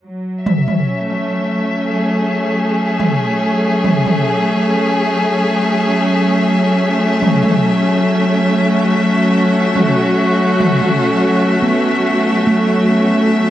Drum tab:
T2 |--oo----------o-|--oo------------|--oo----------o-|--oo------------|